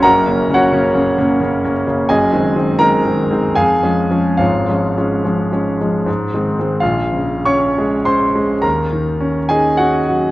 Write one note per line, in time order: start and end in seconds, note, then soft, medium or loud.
0.03 0.26 F#1 medium
0.03 0.26 F#2 medium
0.03 0.51 A#4 medium
0.03 0.51 F#5 medium
0.03 0.54 A#5 loud
0.27 0.47 C#3 medium
0.27 0.47 A#3 medium
0.27 0.48 C#4 medium
0.49 0.70 C#3 medium
0.49 0.70 A#3 medium
0.49 0.71 C#4 medium
0.54 1.71 F#4 medium
0.54 1.71 C#5 medium
0.54 1.75 F#5 medium
0.72 0.93 C#3 medium
0.72 0.93 A#3 medium
0.72 0.93 C#4 medium
0.95 1.15 C#3 medium
0.95 1.15 A#3 medium
0.95 1.16 C#4 medium
1.18 1.39 C#3 medium
1.18 1.39 A#3 medium
1.18 1.39 C#4 medium
1.40 1.61 C#3 medium
1.40 1.61 A#3 medium
1.40 1.62 C#4 medium
1.64 1.85 C#3 medium
1.64 1.85 A#3 medium
1.64 1.85 C#4 medium
1.87 2.07 C#3 medium
1.87 2.08 A#3 medium
1.87 2.08 C#4 medium
2.09 2.32 F#1 medium
2.09 2.32 F#2 medium
2.09 2.76 G#4 medium
2.09 2.76 D#5 medium
2.09 2.79 G#5 medium
2.33 2.54 D#3 medium
2.33 2.54 G#3 medium
2.33 2.54 C4 medium
2.56 2.77 D#3 medium
2.56 2.77 G#3 medium
2.56 2.77 C4 medium
2.79 3.02 D#3 medium
2.79 3.02 G#3 medium
2.79 3.02 C4 medium
2.79 3.52 A#4 medium
2.79 3.55 A#5 loud
3.05 3.28 D#3 medium
3.05 3.28 G#3 medium
3.05 3.28 C4 medium
3.31 3.54 D#3 medium
3.31 3.54 G#3 soft
3.31 3.54 C4 medium
3.55 3.82 F2 medium
3.55 4.36 G#4 medium
3.55 4.36 F5 medium
3.55 4.39 G#5 medium
3.83 4.08 F3 medium
3.83 4.08 G#3 soft
3.83 4.08 C#4 medium
4.10 4.36 F3 medium
4.10 4.37 G#3 soft
4.10 4.37 C#4 medium
4.37 4.67 G#1 medium
4.37 4.67 G#2 medium
4.37 6.03 F4 medium
4.37 6.03 C#5 medium
4.37 6.06 F5 medium
4.69 4.94 F3 soft
4.69 4.94 G#3 soft
4.69 4.94 C#4 soft
4.97 5.22 F3 soft
4.97 5.23 G#3 soft
4.97 5.23 C#4 medium
5.24 5.50 F3 soft
5.24 5.50 G#3 soft
5.24 5.50 C#4 medium
5.52 5.78 F3 soft
5.52 5.77 G#3 soft
5.52 5.78 C#4 medium
5.81 6.05 F3 medium
5.81 6.05 G#3 soft
5.81 6.05 C#4 soft
6.06 6.32 G#2 medium
6.34 6.57 D#3 soft
6.34 6.57 G#3 soft
6.34 6.57 C4 medium
6.59 6.79 D#3 soft
6.59 6.79 G#3 soft
6.59 6.79 C4 medium
6.80 8.61 A#1 medium
6.80 7.43 F4 medium
6.80 7.47 F5 medium
7.13 7.66 C#3 soft
7.45 7.95 C#4 medium
7.45 8.02 C#5 medium
7.45 8.06 C#6 medium
7.78 8.24 G#3 medium
8.05 8.53 C#4 medium
8.05 8.60 C5 medium
8.05 8.64 C6 medium
8.35 8.64 G#3 medium
8.62 10.31 D#2 medium
8.62 9.45 A#4 medium
8.62 9.49 A#5 medium
8.92 9.38 D#3 medium
9.21 9.67 C#4 medium
9.49 9.97 D#4 medium
9.49 9.77 G#4 medium
9.49 9.79 G#5 medium
9.77 10.26 C#4 medium
9.77 10.31 F#4 medium
9.77 10.31 F#5 medium
10.08 10.31 F#3 medium